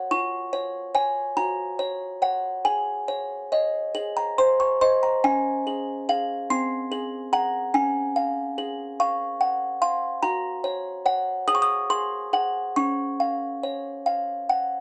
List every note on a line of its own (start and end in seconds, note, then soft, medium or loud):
0.11 1.33 F4 medium
0.11 1.32 C#6 medium
0.53 0.93 C#5 medium
0.95 1.33 C#5 medium
0.95 1.33 G#5 medium
1.37 2.61 F#4 medium
1.37 2.61 A#5 medium
1.79 2.21 C#5 medium
2.22 2.61 C#5 soft
2.22 2.61 F#5 soft
2.65 3.91 G#4 medium
2.65 4.12 G#5 medium
3.08 3.51 C#5 soft
3.52 3.91 C#5 soft
3.52 3.91 D#5 soft
3.95 5.20 G#4 medium
4.17 4.38 A#5 medium
4.38 4.80 C5 soft
4.38 4.60 C6 medium
4.60 4.81 C#6 medium
4.81 5.20 C5 soft
4.81 5.20 D#5 soft
4.81 5.03 C6 medium
5.03 5.24 A#5 medium
5.24 6.47 C#4 medium
5.24 6.47 G#5 medium
5.67 6.08 G#4 soft
6.09 6.47 G#4 soft
6.09 6.47 F5 soft
6.50 7.70 C4 medium
6.50 7.30 C6 medium
6.92 7.32 G#4 soft
7.33 7.70 G#4 soft
7.33 7.70 F#5 soft
7.33 7.72 A#5 medium
7.74 10.19 C#4 medium
7.74 8.96 G#5 medium
8.16 8.83 F5 soft
8.58 9.25 G#4 soft
9.00 9.66 F5 medium
9.00 9.79 C#6 medium
9.41 9.82 F#5 soft
9.82 10.23 F5 medium
9.82 10.21 C6 medium
10.23 11.44 F#4 medium
10.23 11.44 A#5 medium
10.64 11.04 C#5 medium
11.06 11.44 C#5 soft
11.06 11.44 F#5 medium
11.48 11.89 G#4 medium
11.48 11.55 D#6 loud
11.55 11.62 C#6 medium
11.62 11.89 D#6 loud
11.90 12.32 G#4 medium
11.90 12.73 C6 loud
12.33 12.73 G#4 soft
12.33 12.73 F#5 soft
12.76 14.80 C#4 soft
12.76 14.02 C#6 medium
13.20 13.89 F5 soft
13.63 14.32 C#5 soft
14.06 14.76 F5 soft
14.49 14.80 F#5 soft